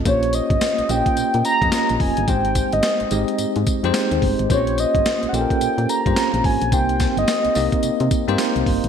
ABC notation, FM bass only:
X:1
M:4/4
L:1/16
Q:"Swing 16ths" 1/4=108
K:Bbdor
V:1 name="FM bass" clef=bass
B,,,3 G,,, z B,,, B,,, z B,, B,, z F,, z B,,, F,,, G,,, | A,,,3 G,,, z A,,, A,,, z A,, A,, z F,, z E,, G,,, A,,, | B,,,3 G,,, z B,,, B,,, z B,, B,, z G,, z B,,, A,,, B,,, | C,,3 G,,, z C,, C,, z C, C, z G,, z C,, G,,, A,,, |]